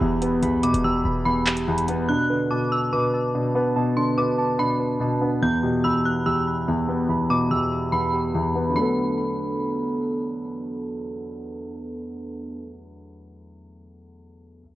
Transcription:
0.00 0.44 E1 loud
0.00 0.42 E2 medium
0.00 0.63 B2 medium
0.00 0.62 B3 medium
0.00 0.20 G4 medium
0.00 0.41 B5 medium
0.21 1.26 B3 medium
0.21 0.83 G4 medium
0.21 closed hi-hat medium
0.42 0.72 B1 loud
0.42 0.83 E2 medium
0.42 1.04 B5 loud
0.42 closed hi-hat medium
0.63 1.67 B2 medium
0.63 1.25 B3 medium
0.63 0.83 D6 medium
0.63 closed hi-hat medium
0.74 1.04 E1 loud
0.74 closed hi-hat medium
0.84 1.24 E2 medium
0.84 1.45 G4 medium
0.84 1.23 E6 medium
1.05 2.05 E1 loud
1.05 1.66 B5 medium
1.26 1.67 E2 medium
1.26 1.87 B3 medium
1.26 2.05 B5 medium
1.46 2.09 G4 medium
1.46 clap loud
1.57 closed hi-hat medium
1.67 2.09 E2 medium
1.67 2.09 B5 medium
1.78 closed hi-hat medium
1.88 2.09 B3 medium
1.88 closed hi-hat medium
2.09 2.50 B2 medium
2.09 2.71 D4 loud
2.09 2.48 F#6 loud
2.30 3.34 D3 medium
2.30 2.91 B4 medium
2.51 2.92 B2 medium
2.51 3.12 A5 medium
2.51 2.71 D6 medium
2.72 3.33 D4 medium
2.72 2.92 E6 medium
2.93 3.33 B2 medium
2.93 3.54 B4 loud
2.93 3.32 D6 medium
3.13 3.75 A5 medium
3.34 3.75 B2 medium
3.34 3.95 D4 medium
3.55 4.59 B3 medium
3.55 4.17 B4 medium
3.76 4.16 B2 medium
3.76 4.37 A5 loud
3.97 5.01 D3 medium
3.97 4.58 D4 medium
3.97 4.16 C6 medium
4.18 4.57 B2 medium
4.18 4.79 B4 medium
4.18 4.57 D6 medium
4.38 5.00 A5 medium
4.59 4.99 B2 medium
4.59 5.21 D4 medium
4.59 4.98 B5 medium
4.80 5.42 B4 medium
5.00 5.42 B2 medium
5.00 5.42 A5 medium
5.22 5.42 B3 medium
5.22 5.42 D4 medium
5.42 5.83 E2 medium
5.42 6.04 B3 loud
5.42 5.82 G6 loud
5.63 6.67 B2 medium
5.63 6.25 G4 medium
5.84 6.25 E2 medium
5.84 6.46 B5 medium
5.84 6.04 E6 medium
6.05 6.66 B3 medium
6.05 6.25 F#6 medium
6.26 6.66 E2 medium
6.26 6.87 G4 medium
6.26 6.65 E6 medium
6.47 7.08 B5 medium
6.67 7.07 E2 medium
6.67 7.29 B3 medium
6.88 7.92 B3 medium
6.88 7.50 G4 medium
7.09 7.49 E2 medium
7.09 7.70 B5 medium
7.30 8.34 B2 medium
7.30 7.91 B3 medium
7.30 7.50 D6 medium
7.51 7.91 E2 medium
7.51 8.12 G4 medium
7.51 7.90 E6 medium
7.72 8.33 B5 medium
7.92 8.33 E2 medium
7.92 8.54 B3 medium
7.92 8.72 B5 medium
8.13 8.76 G4 medium
8.34 8.76 E2 medium
8.34 8.76 B5 medium
8.55 8.69 B3 medium
8.55 8.76 B3 medium
8.70 12.57 D3 medium
8.70 12.60 F#3 medium
8.70 12.57 B3 medium
8.76 12.65 A3 medium
8.76 12.63 D4 medium
8.76 9.97 B5 medium
8.82 12.69 B3 medium
8.82 12.69 A4 medium

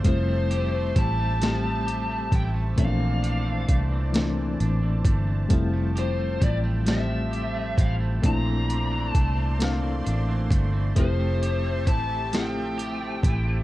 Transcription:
0.00 0.14 A#2 medium
0.00 1.03 G3 medium
0.00 0.27 A3 medium
0.00 0.14 D4 medium
0.00 2.74 C5 medium
0.05 0.92 F1 loud
0.05 1.41 F3 medium
0.05 1.04 A3 medium
0.05 1.05 C4 medium
0.05 1.06 E4 medium
0.05 2.75 G4 medium
0.05 0.99 C5 loud
0.05 2.75 E5 medium
0.05 8.19 A5 loud
0.05 kick medium
0.05 closed hi-hat medium
0.27 0.74 A3 medium
0.51 1.85 G4 medium
0.51 closed hi-hat medium
0.74 1.19 A3 medium
0.96 2.29 A1 medium
0.96 2.32 E4 medium
0.96 2.38 A5 loud
0.96 kick loud
0.96 closed hi-hat medium
1.19 1.63 A3 medium
1.40 3.00 F3 medium
1.40 2.40 G3 medium
1.40 2.41 A3 medium
1.40 2.41 C4 medium
1.40 snare loud
1.40 closed hi-hat medium
1.44 2.42 G4 medium
1.64 2.09 A3 medium
1.86 2.87 G4 medium
1.86 closed hi-hat medium
2.10 2.54 A3 medium
2.32 2.74 A1 medium
2.32 3.22 E4 medium
2.32 2.47 G5 loud
2.32 kick loud
2.32 closed hi-hat medium
2.54 3.69 A3 medium
2.76 3.65 A#1 loud
2.76 4.14 A#2 medium
2.76 3.76 E3 medium
2.76 5.48 E3 medium
2.76 3.77 A3 medium
2.76 3.78 C4 medium
2.76 5.48 C5 medium
2.76 5.48 D5 medium
2.76 3.77 F5 medium
2.76 kick loud
2.76 closed hi-hat medium
2.80 2.85 C#4 medium
2.87 3.81 D4 medium
3.00 3.45 E3 medium
3.23 4.59 D4 medium
3.23 closed hi-hat medium
3.46 3.92 E3 medium
3.69 4.56 C2 medium
3.69 5.05 A3 medium
3.69 kick medium
3.69 closed hi-hat medium
3.92 4.37 E3 medium
4.13 5.60 A#2 medium
4.13 5.13 E3 medium
4.13 5.13 A3 medium
4.13 5.14 C4 medium
4.13 snare loud
4.13 closed hi-hat medium
4.17 5.15 D4 medium
4.37 4.82 E3 medium
4.60 5.01 A1 medium
4.60 5.60 D4 medium
4.60 closed hi-hat medium
4.83 5.28 E3 medium
5.05 5.47 G1 medium
5.05 5.73 A3 medium
5.05 kick loud
5.05 closed hi-hat medium
5.28 5.50 E3 medium
5.49 6.38 F1 loud
5.49 6.86 F3 medium
5.49 8.21 F3 medium
5.49 6.49 G3 medium
5.49 6.50 A3 medium
5.49 6.50 C4 medium
5.49 13.63 C5 medium
5.49 8.21 G5 medium
5.49 kick loud
5.49 closed hi-hat medium
5.53 6.51 E4 loud
5.73 6.18 A3 medium
5.95 7.30 G4 medium
5.95 6.43 C5 medium
5.95 closed hi-hat medium
6.18 6.63 A3 medium
6.41 7.74 A1 loud
6.41 7.77 E4 medium
6.41 6.55 D5 medium
6.41 kick loud
6.41 closed hi-hat medium
6.64 7.08 A3 medium
6.86 8.45 F3 medium
6.86 7.85 G3 medium
6.86 7.86 A3 medium
6.86 7.87 C4 medium
6.86 7.80 E5 medium
6.86 snare loud
6.86 closed hi-hat medium
6.90 7.88 G4 medium
7.09 7.54 A3 medium
7.31 8.32 G4 medium
7.31 closed hi-hat medium
7.54 8.00 A3 medium
7.78 8.19 A1 medium
7.78 8.69 E4 medium
7.78 7.92 F5 loud
7.78 kick loud
7.78 closed hi-hat medium
8.00 9.14 A3 medium
8.22 9.10 A#1 loud
8.22 9.59 A#2 medium
8.22 9.22 A3 medium
8.22 10.93 A3 medium
8.22 9.23 C4 medium
8.22 9.23 D4 medium
8.22 10.93 D5 medium
8.22 9.11 A#5 medium
8.22 10.93 C6 loud
8.22 kick loud
8.22 closed hi-hat medium
8.26 9.24 E4 medium
8.46 8.91 E3 medium
8.69 10.03 D4 medium
8.69 closed hi-hat medium
8.91 9.37 E3 medium
9.11 10.50 A3 medium
9.11 9.57 A5 medium
9.11 kick loud
9.11 closed hi-hat medium
9.15 10.01 C2 loud
9.37 9.81 E3 medium
9.59 11.05 A#2 medium
9.59 10.58 A3 medium
9.59 10.59 C4 medium
9.59 10.60 D4 medium
9.59 snare loud
9.59 closed hi-hat medium
9.63 10.60 F5 medium
9.82 10.28 E3 medium
10.04 10.47 A1 medium
10.04 11.05 D4 medium
10.04 closed hi-hat medium
10.28 10.72 E3 medium
10.50 10.92 G1 medium
10.50 11.19 A3 medium
10.50 kick loud
10.50 closed hi-hat medium
10.73 10.95 E3 medium
10.95 11.88 F1 medium
10.95 12.32 F3 medium
10.95 11.95 A3 medium
10.95 11.96 C4 medium
10.95 11.96 E4 medium
10.95 13.63 G4 medium
10.95 11.84 C5 loud
10.95 13.63 E5 medium
10.95 13.63 A5 loud
10.95 kick loud
10.95 closed hi-hat medium
11.00 11.97 G4 medium
11.19 11.64 A3 medium
11.42 12.77 G4 medium
11.42 closed hi-hat medium
11.65 12.09 A3 medium
11.87 13.20 A1 medium
11.87 13.23 E4 medium
11.87 12.34 A5 loud
11.87 kick medium
11.87 closed hi-hat medium
12.10 12.54 A3 medium
12.32 13.63 F3 medium
12.32 13.31 A3 medium
12.32 13.32 C4 medium
12.32 13.33 E4 medium
12.32 13.63 G5 loud
12.32 snare loud
12.32 closed hi-hat medium
12.36 13.33 G4 medium
12.55 13.01 A3 medium
12.78 13.63 G4 medium
12.78 closed hi-hat medium
13.01 13.46 A3 medium
13.23 13.63 A1 loud
13.23 13.63 E4 medium
13.23 kick loud
13.23 closed hi-hat medium
13.47 13.63 A3 medium

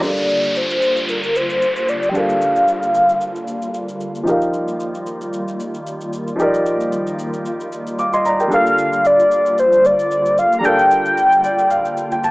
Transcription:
0.00 4.23 D3 medium
0.00 2.09 G3 medium
0.00 12.31 G3 medium
0.00 12.31 A#3 medium
0.00 2.10 D4 medium
0.00 4.23 F4 medium
0.00 2.11 A4 medium
0.00 0.16 D5 medium
0.00 0.58 D5 medium
0.00 0.16 A#5 medium
0.00 downlifter medium
0.00 shaker medium
0.05 2.12 A#4 medium
0.05 2.13 F5 medium
0.17 shaker medium
0.29 shaker medium
0.43 shaker soft
0.55 1.11 C5 medium
0.55 shaker medium
0.70 shaker medium
0.82 shaker medium
0.97 shaker soft
1.09 1.36 A#4 medium
1.09 shaker medium
1.24 shaker soft
1.36 1.91 C5 loud
1.36 shaker medium
1.50 shaker medium
1.62 shaker medium
1.76 shaker medium
1.88 2.11 D5 medium
1.88 shaker medium
2.03 shaker soft
2.09 4.21 G3 medium
2.09 2.17 G5 medium
2.13 4.22 D4 medium
2.13 4.23 A4 medium
2.13 4.24 A#4 medium
2.13 3.75 F5 loud
2.13 shaker medium
2.19 4.25 F5 medium
2.29 shaker soft
2.42 shaker medium
2.56 shaker soft
2.68 shaker medium
2.83 shaker medium
2.95 shaker loud
3.09 shaker medium
3.21 shaker medium
3.36 shaker soft
3.48 shaker medium
3.62 shaker medium
3.74 shaker medium
3.89 shaker medium
4.01 shaker medium
4.15 shaker soft
4.23 8.48 D#3 medium
4.23 6.34 F3 medium
4.23 6.35 D#4 medium
4.23 12.31 F4 medium
4.23 6.36 G4 medium
4.23 shaker medium
4.29 6.37 A#4 medium
4.29 6.38 F5 medium
4.42 shaker medium
4.54 shaker medium
4.68 shaker soft
4.80 shaker medium
4.95 shaker medium
5.07 shaker medium
5.21 shaker soft
5.33 shaker medium
5.48 shaker soft
5.60 shaker medium
5.74 shaker medium
5.87 shaker medium
6.01 shaker medium
6.13 shaker medium
6.27 shaker soft
6.36 8.46 F3 medium
6.36 8.47 D#4 medium
6.36 8.48 G4 medium
6.36 shaker medium
6.42 7.97 A#4 medium
6.42 7.98 D5 medium
6.54 shaker medium
6.66 shaker medium
6.80 shaker soft
6.92 shaker medium
7.07 shaker medium
7.19 shaker medium
7.33 shaker medium
7.46 shaker medium
7.60 shaker soft
7.72 shaker medium
7.87 shaker medium
7.99 8.13 F5 soft
7.99 8.13 D6 medium
7.99 shaker medium
8.13 8.25 D#5 medium
8.13 8.25 C6 medium
8.13 shaker medium
8.25 8.40 D5 medium
8.25 8.39 A#5 medium
8.25 shaker medium
8.40 8.52 A#4 medium
8.40 8.65 G5 medium
8.40 shaker soft
8.48 12.31 D3 medium
8.48 10.58 G3 medium
8.48 10.59 D4 medium
8.48 10.60 A4 medium
8.48 shaker medium
8.53 10.61 A#4 medium
8.53 9.08 F5 medium
8.53 10.62 F5 medium
8.66 shaker medium
8.78 shaker medium
8.93 shaker soft
9.05 9.61 D5 medium
9.05 shaker medium
9.20 shaker medium
9.31 shaker medium
9.46 shaker medium
9.58 9.87 C5 medium
9.58 shaker medium
9.73 shaker soft
9.85 10.40 D5 loud
9.85 shaker medium
9.99 shaker medium
10.11 shaker medium
10.26 shaker medium
10.38 10.58 F5 medium
10.38 shaker medium
10.52 shaker soft
10.59 12.31 G3 medium
10.59 12.31 D4 medium
10.59 10.66 A#5 medium
10.64 12.31 A4 medium
10.64 12.31 A#4 medium
10.64 12.24 G5 loud
10.64 shaker medium
10.68 11.69 F5 medium
10.79 shaker medium
10.91 shaker medium
11.06 shaker soft
11.17 shaker medium
11.32 shaker medium
11.44 11.69 D5 medium
11.44 shaker medium
11.59 shaker medium
11.71 12.09 F5 medium
11.71 shaker medium
11.85 shaker soft
11.97 shaker medium
12.12 12.23 G5 medium
12.12 shaker medium
12.24 12.31 A5 medium
12.24 shaker medium

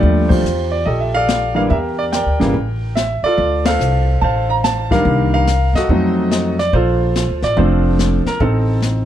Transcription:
0.00 0.42 D#2 medium
0.00 0.42 D3 medium
0.00 0.42 F3 medium
0.00 0.42 G3 medium
0.00 0.42 A3 medium
0.00 0.30 F4 medium
0.00 0.30 G4 medium
0.00 0.31 D5 medium
0.00 brush sweep soft
0.00 kick soft
0.29 1.11 F4 medium
0.29 0.86 G4 medium
0.29 0.73 C5 medium
0.29 kick medium
0.29 ride medium
0.43 0.83 E2 medium
0.43 hi-hat pedal soft
0.71 0.85 D5 medium
0.85 1.66 A#1 medium
0.85 1.67 G4 medium
0.85 1.15 A4 medium
0.85 1.00 D#5 medium
0.85 brush sweep soft
0.85 kick soft
1.00 1.14 E5 medium
1.15 1.67 A4 medium
1.15 1.68 D5 medium
1.15 1.55 F5 loud
1.29 snare medium
1.29 hi-hat pedal medium
1.55 1.68 D3 medium
1.55 1.68 E3 medium
1.55 1.69 G3 medium
1.55 1.69 A#3 medium
1.55 1.61 F5 medium
1.70 2.22 E2 medium
1.70 2.51 G4 medium
1.70 2.13 A#4 medium
1.70 1.76 E5 medium
1.70 brush sweep soft
1.70 kick soft
1.99 2.04 D5 medium
2.12 2.93 A#4 medium
2.12 2.52 D5 medium
2.12 2.92 G5 medium
2.12 snare medium
2.12 hi-hat pedal medium
2.26 2.39 D2 medium
2.40 2.53 G#1 medium
2.40 2.53 C#3 medium
2.40 2.53 E3 medium
2.40 2.53 G3 medium
2.40 2.53 A#3 medium
2.40 snare soft
2.54 3.19 A1 medium
2.54 brush sweep soft
2.54 kick soft
2.96 3.24 E5 medium
2.96 snare medium
2.96 hi-hat pedal medium
3.23 4.05 F4 medium
3.23 3.67 A4 medium
3.23 3.63 D5 loud
3.23 muted upright bass stroke soft
3.38 3.77 D2 medium
3.38 brush sweep soft
3.38 kick soft
3.65 4.47 A4 medium
3.65 4.22 C5 medium
3.65 4.18 F5 loud
3.65 snare medium
3.65 ride medium
3.79 4.18 C2 medium
3.79 hi-hat pedal medium
4.21 5.01 A1 medium
4.21 5.02 C5 medium
4.21 4.90 F5 medium
4.21 4.47 A5 medium
4.21 brush sweep soft
4.21 kick soft
4.50 4.55 A#5 medium
4.64 4.92 A5 loud
4.64 snare medium
4.64 hi-hat pedal medium
4.91 5.44 D#3 medium
4.91 5.44 G3 medium
4.91 5.45 A#3 medium
4.91 5.45 D4 medium
4.91 5.34 A#4 medium
4.91 5.30 F5 loud
4.91 kick medium
4.91 snare soft
5.05 5.71 C2 medium
5.05 brush sweep medium
5.05 kick soft
5.34 5.86 A#4 medium
5.34 5.77 F5 loud
5.47 snare medium
5.47 hi-hat pedal medium
5.73 5.87 F#2 medium
5.73 6.56 F#4 medium
5.73 6.56 A4 medium
5.73 6.30 D#5 loud
5.73 snare soft
5.89 6.69 F2 medium
5.89 6.53 F#3 medium
5.89 6.53 A3 medium
5.89 6.53 C4 medium
5.89 6.54 D#4 medium
5.89 brush sweep soft
5.89 kick soft
6.31 6.57 D#5 medium
6.31 snare medium
6.31 hi-hat pedal medium
6.59 6.72 D5 medium
6.59 snare soft
6.73 7.25 A#1 medium
6.73 7.53 F4 medium
6.73 7.54 A4 medium
6.73 7.38 C5 medium
6.73 brush sweep medium
6.73 kick soft
7.16 snare medium
7.16 hi-hat pedal medium
7.29 7.42 D2 medium
7.42 7.55 A1 medium
7.42 7.56 D5 medium
7.42 snare soft
7.57 8.22 F1 medium
7.57 8.21 F3 medium
7.57 8.21 A3 medium
7.57 8.20 C4 medium
7.57 8.21 D4 medium
7.57 8.38 F4 medium
7.57 8.37 A4 medium
7.57 8.23 C5 medium
7.57 brush sweep soft
7.57 kick soft
7.99 snare medium
7.99 hi-hat pedal medium
8.25 8.40 A#4 medium
8.25 muted upright bass stroke soft
8.25 snare soft
8.40 9.05 A1 medium
8.40 9.05 C4 medium
8.40 9.05 D#4 medium
8.40 8.79 A4 medium
8.40 brush sweep medium
8.40 kick soft
8.82 snare medium
8.82 hi-hat pedal medium

